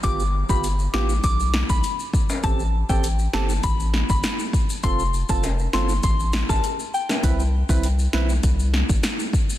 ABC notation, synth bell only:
X:1
M:4/4
L:1/16
Q:1/4=100
K:C
V:1 name="Synth bell"
d' z2 b z2 d' z d' z2 b z4 | a z2 g z2 a z b z2 b z4 | c' z2 a z2 c' z c' z2 a z2 g z | z16 |]